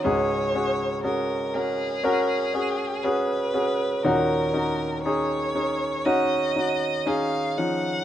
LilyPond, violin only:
\new Staff \with { instrumentName = "Violin" } { \time 4/4 \key ees \minor \tempo 4 = 60 des''4 bes'8 aes'4. ces''4 | bes'4 des''4 ees''4 f''8 ges''8 | }